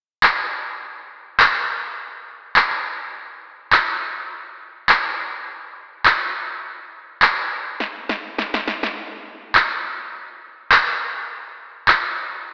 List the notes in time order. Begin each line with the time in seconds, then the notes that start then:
0.23 clap
1.40 clap
2.56 clap
3.72 clap
4.89 clap
6.05 clap
7.22 clap
7.80 snare
8.09 snare
8.38 snare
8.54 snare
8.68 snare
8.83 snare
9.55 clap
10.72 clap
11.88 clap